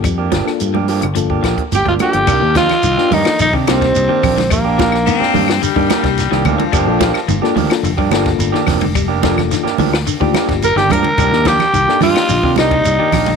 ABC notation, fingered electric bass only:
X:1
M:4/4
L:1/16
Q:1/4=108
K:Cdor
V:1 name="Fingered electric bass" clef=bass
F,,2 G,,, z G,,3 G,,,3 B,,, z G,,, G,,, z G,,, | C,, E,,2 z C,, z G,, z B,,, C, C,,2 C,, z B,,,2- | B,,,4- B,,, z G,,2 z G,, z C,,2 C,, D,, z | G,,, B,,,2 z G,,, z D,, z F,,, G,, G,,,2 G,,, z F,,,2- |
F,,,4- F,,, z D,,2 z D,, z G,,,2 G,,, G,, z | C,, E,,2 z C,, z G,, z B,,, C, C,,2 C,, z B,,,2 |]